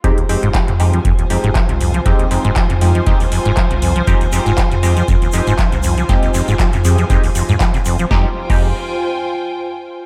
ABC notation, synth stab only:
X:1
M:4/4
L:1/16
Q:"Swing 16ths" 1/4=119
K:Fm
V:1 name="Synth stab"
[A,CEG] z [A,CEG] z3 [A,CEG] z3 [A,CEG] z4 z | [A,CEG]2 [A,CEG] z3 [A,CEG] z [A,CEG] z6 z | [A,CEG] z [A,CEG] z3 [A,CEG] z3 [A,CEG] z4 z | [A,CEG]2 [A,CEG] z3 [A,CEG] z [A,CEG] z6 z |
[A,CEG] z2 [A,CEG]2 z8 z3 |]